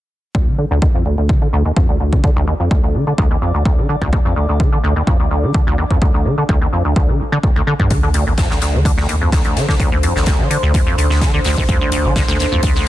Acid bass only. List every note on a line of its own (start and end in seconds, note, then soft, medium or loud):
0.35 0.49 D2 medium
0.47 0.56 D3 loud
0.58 0.65 D3 medium
0.71 0.80 D2 loud
0.82 0.89 D#2 medium
0.94 1.04 F2 medium
1.06 1.16 D2 medium
1.18 1.31 D2 medium
1.29 1.40 D3 loud
1.42 1.48 D3 medium
1.53 1.63 D2 loud
1.65 1.71 D#2 medium
1.76 1.87 F2 medium
1.89 1.98 D2 medium
2.00 2.14 D2 medium
2.13 2.22 D3 loud
2.24 2.31 D3 medium
2.36 2.45 D2 loud
2.47 2.54 D#2 medium
2.60 2.69 F2 medium
2.71 2.81 D2 medium
2.83 2.96 D2 medium
2.95 3.05 D3 loud
3.07 3.13 D3 medium
3.18 3.29 D2 loud
3.31 3.37 D#2 medium
3.42 3.52 F2 medium
3.54 3.64 D2 medium
3.78 3.87 D3 loud
3.89 3.96 D3 medium
4.02 4.11 D2 loud
4.13 4.20 D#2 medium
4.25 4.34 F2 medium
4.36 4.47 D2 medium
4.49 4.61 D2 medium
4.60 4.70 D3 loud
4.72 4.79 D3 medium
4.84 4.94 D2 loud
4.96 5.02 D#2 medium
5.07 5.18 F2 medium
5.20 5.29 D2 medium
5.31 5.45 D2 medium
5.43 5.53 D3 loud
5.54 5.61 D3 medium
5.67 5.76 D2 loud
5.78 5.85 D#2 medium
5.91 6.00 F2 medium
6.02 6.12 D2 medium
6.14 6.27 D2 medium
6.25 6.36 D3 loud
6.38 6.44 D3 medium
6.49 6.59 D2 loud
6.61 6.68 D#2 medium
6.73 6.83 F2 medium
6.85 6.94 D2 medium
6.96 7.10 D2 medium
7.09 7.21 D3 loud
7.20 7.24 D1 medium
7.32 7.38 D3 loud
7.43 7.50 D2 medium
7.56 7.62 D2 loud
7.67 7.74 D3 loud
7.80 7.92 G2 loud
7.91 8.01 D3 loud
8.03 8.09 D3 medium
8.14 8.25 D2 loud
8.27 8.33 D#2 medium
8.38 8.48 F2 medium
8.50 8.60 D2 medium
8.62 8.75 D2 medium
8.74 8.83 D3 loud
8.85 8.92 D3 medium
8.98 9.07 D2 loud
9.09 9.16 D#2 medium
9.21 9.30 F2 medium
9.32 9.43 D2 medium
9.45 9.58 D2 medium
9.56 9.66 D3 loud
9.69 9.75 D3 medium
9.80 9.90 D2 loud
9.92 9.98 D#2 medium
10.03 10.14 F2 medium
10.16 10.25 D2 medium
10.27 10.41 D2 medium
10.39 10.49 D3 loud
10.51 10.57 D3 medium
10.63 10.72 D2 loud
10.74 10.81 D#2 medium
10.87 10.96 F2 medium
10.98 11.08 D2 medium
11.10 11.23 D2 medium
11.21 11.32 D3 medium
11.34 11.40 D3 medium
11.45 11.55 D2 loud
11.58 11.64 D#2 medium
11.69 11.79 F2 medium
11.81 11.90 D2 medium
11.92 12.06 D2 medium
12.05 12.14 D3 loud
12.16 12.23 D3 medium
12.28 12.38 D2 loud
12.39 12.46 D#2 medium
12.52 12.61 F2 medium
12.63 12.73 D2 medium
12.76 12.88 D2 medium